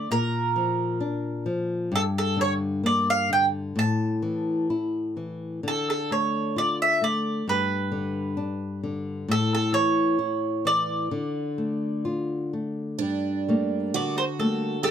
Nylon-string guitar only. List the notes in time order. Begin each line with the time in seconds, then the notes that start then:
0.11 A#2
0.56 F3
1.00 D4
1.46 F3
1.92 G2
2.37 D3
2.83 A#3
3.29 D3
3.76 A2
4.22 E3
4.70 E4
5.17 E3
5.63 D3
6.11 A3
6.56 F4
7.01 A3
7.48 G2
7.92 D3
8.37 D4
8.83 D3
9.28 A2
9.72 E3
10.19 E4
10.65 E3
11.11 D3
11.58 A3
12.05 F4
12.53 A3
13.01 G2
13.48 G3 A3 A#3
13.95 D3
14.39 G3 A3 A#3
14.84 D#3